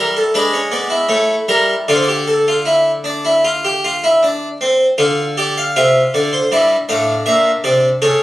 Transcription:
Already playing: E4 A#4
0.00 G3
0.17 A4
0.34 G#3 D4 B4
0.53 C#4
0.72 B3 D5
0.90 E4
1.09 A3 C#5
1.48 G3 A#4
1.88 D3 F4 D5
1.94 C5
2.02 D5
2.08 G4
2.28 A4
2.48 F4
2.66 E4
3.04 D4
3.25 E4
3.45 F4
3.65 G4
3.84 F4
4.04 E4
4.23 D4
4.61 C4
4.98 D3 F4
5.37 G4 D5
5.58 F5
5.76 C3 F4 E5
6.14 D3 D5
6.33 C5
6.52 G2 E4 D5
6.89 A2 D4 F5
7.26 A#2 E5
7.64 C3 D5
8.02 C#3 A4 C#5

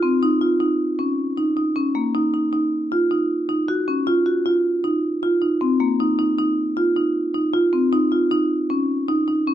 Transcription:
0.03 C4
0.23 D#4
0.41 F4
0.60 D#4
0.99 C#4
1.38 D#4
1.57 D#4
1.76 C#4
1.95 A#3
2.15 D#4
2.34 D#4
2.53 D#4
2.92 F4
3.11 D#4
3.49 D#4
3.68 F#4
3.88 C#4
4.07 F4
4.26 F#4
4.46 F4
4.84 D#4
5.23 F4
5.42 D#4
5.61 C4
5.80 A#3
6.00 D#4
6.19 D#4
6.38 D#4
6.77 F4
6.96 D#4
7.35 D#4
7.54 F4
7.73 C4
7.93 D#4
8.12 F4
8.31 D#4
8.70 C#4
9.09 D#4
9.28 D#4
9.48 C#4

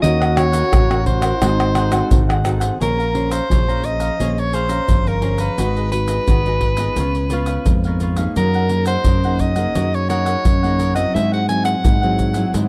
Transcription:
0.02 D#2 D#3 C#4 D#4 F#4 A#4 C#5 D#5 F#5, pandeiro, shaker, surdo
0.20 A#4 C#5 F#5, pandeiro, tamborim, shaker
0.36 C#4 F#4 A#4 C#5, muted cavaquinho stroke, pandeiro, tamborim, shaker
0.52 A#4 C#5 F#5, pandeiro, shaker
0.71 A1 D#4 A#4 C#5 F#5, pandeiro, tamborim, shaker, surdo
0.90 C#4 F#4 A#4 C#5 F#5, pandeiro, tamborim, shaker
1.06 C5, pandeiro, surdo
1.21 A#4 C#5 F#5, pandeiro, tamborim, shaker
1.41 G#1 G#3 C4 D#4 F#4 G#4 A4 C5 F#5, pandeiro, tamborim, shaker, surdo
1.60 muted cavaquinho stroke, pandeiro, tamborim, shaker
1.75 D#4 G#4 C5 F#5, pandeiro, tamborim, shaker
1.91 C4 F#4 G#4 A4 C5 F#5, pandeiro, tamborim, shaker
2.11 G#1 D#3, pandeiro, shaker, surdo
2.29 G#4 C5 F#5, pandeiro, tamborim, shaker
2.44 C4 D#4 F#4 G#4 A4 C5 F#5, pandeiro, tamborim, shaker
2.60 G#4 C5 F#5, pandeiro, shaker
2.80 A#1 A#3 C#4 G#4 A#4 C5 C#5 F5 A#5, pandeiro, shaker, surdo
2.98 C#5 F5 A#5, pandeiro, shaker
3.14 C#4 G#4 C5, muted cavaquinho stroke, pandeiro
3.30 C5 C#5 F5 A#5, pandeiro, shaker
3.50 A#1 F3 C#4 G#4 C5 C#5 F5 A#5, pandeiro, shaker, surdo
3.68 C#4 G#4 C5 C#5 F5 A#5, pandeiro, shaker
3.84 D#5, pandeiro, shaker
4.00 C#5 F5 A#5, pandeiro, shaker
4.19 A#1 A#3 C#4 G#4 C5 C#5 F5 A#5, pandeiro, shaker, surdo
4.33 D#5
4.38 C#5, muted cavaquinho stroke, pandeiro, shaker
4.53 G#4 C5 C#5 F5 A#5, pandeiro, shaker
4.69 C#4 G#4 C5 F5 A#5, pandeiro, shaker
4.88 G1 F3, pandeiro, shaker, surdo
5.07 A#4 C#5 F5 A#5, pandeiro, shaker
5.22 C#4 G#4 C5 C#5 F5 A#5, pandeiro
5.38 B4 C#5 F5 A#5, pandeiro, shaker
5.58 G#1 G#3 D#4 F#4 G#4 B4 D#5, pandeiro, shaker, surdo
5.76 G#4 B4 D#5, pandeiro, shaker
5.92 D#4 F#4 B4, muted cavaquinho stroke, pandeiro, shaker
6.08 G#4 B4 D#5, pandeiro, shaker
6.28 G#1 D#3 F#4 G#4 B4 D#5, pandeiro, shaker, surdo
6.46 D#4 F#4 G#4 B4 D#5, pandeiro, shaker
6.61 pandeiro, surdo
6.77 B3 F4 G#4 B4 D#5, pandeiro, shaker
6.96 C#2 C#3 F4 B4 C#5 F5, pandeiro, shaker, surdo
7.15 muted cavaquinho stroke, pandeiro, shaker
7.30 B3 F4 B4 C#5 F5, pandeiro, shaker
7.46 B4 C#5 F5, pandeiro, shaker
7.66 F2 G#2, pandeiro, shaker, surdo
7.84 B3 F4 A#4 B4 C#5 F5, pandeiro, shaker
8.00 F4 B4 C#5 F5, pandeiro, shaker
8.16 A#3 D#4 G#4 B4 C#5 F5, pandeiro, shaker
8.36 F#2 F#3 F#4 A#4 D#5 F#5, pandeiro, shaker, surdo
8.54 A#4 D#5 F#5, pandeiro, shaker
8.69 A#3 D#4 G#4, muted cavaquinho stroke, pandeiro
8.86 A#4 C5 D#5 F#5, pandeiro, shaker
9.04 F#2 C#3 F#4 A#4 D#5 F#5, pandeiro, shaker, surdo
9.24 A#3 D#4 G#4 A#4 D#5 F#5, pandeiro, shaker
9.39 D#5, pandeiro, shaker, surdo
9.56 A#3 D#4 G#4 A#4 D#5 F#5, pandeiro, shaker
9.75 F#2 F#3 F#4 A#4 D#5 F#5, pandeiro, shaker, surdo
9.94 C#5, muted cavaquinho stroke, pandeiro, shaker
10.09 A#3 D#4 F#4 G#4 A#4 C#5 D#5 F#5, pandeiro, shaker
10.25 A#4 D#5 F#5, pandeiro, shaker
10.45 F#2 C#3, pandeiro, shaker, surdo
10.63 A#3 D#4 G#4 A#4 D#5 F#5, pandeiro, shaker
10.79 F#4 A#4 D#5 F#5, pandeiro, shaker
10.95 F#3 C4 E4 A#4 D#5 F#5, pandeiro, shaker
11.14 G#2 E4 G#4 C5 E5 F#5, pandeiro, shaker, surdo
11.32 G#4 C5 F#5, pandeiro, shaker
11.48 F#3 C4 E4 G#5, muted cavaquinho stroke, pandeiro, shaker
11.64 G#4 C5 F#5, pandeiro, shaker
11.84 G#2 E4 G#4 C5 F#5, pandeiro, shaker, surdo
12.02 F#3 C4 E4 G#4 C5 F#5, pandeiro, shaker
12.19 pandeiro, shaker, surdo
12.33 F#3 C4 E4 G#4 C5 F#5, pandeiro, shaker
12.53 G#2 E4 G#4 C5 F#5, pandeiro, shaker, surdo

